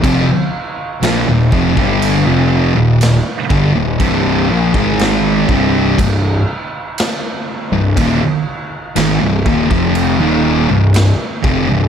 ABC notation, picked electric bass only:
X:1
M:4/4
L:1/16
Q:1/4=60
K:Cm
V:1 name="Picked electric bass" clef=bass
F,,, z3 B,,, E,,, F,,, G,,,2 F,,,2 E,,,2 z G,,, E,,, | C,,,2 B,,, A,,,3 C,,,2 C,,,2 z4 z C,,, | E,,, z3 A,,, C,,, E,,, F,,,2 E,,,2 C,,,2 z F,,, C,,, |]